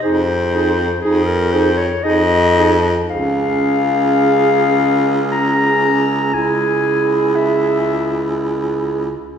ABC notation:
X:1
M:3/4
L:1/16
Q:1/4=58
K:Dblyd
V:1 name="Clarinet"
c4 A B c d e3 z | f8 b4 | a4 _f4 z4 |]
V:2 name="Alto saxophone"
A2 A2 A2 A2 A2 A2 | A12 | A8- A3 z |]
V:3 name="Clarinet"
E2 E2 E2 E2 E2 E2 | D12 | _F8- F3 z |]
V:4 name="Baritone saxophone" clef=bass
F,,4 F,,4 F,,4 | D,,12 | D,,8- D,,3 z |]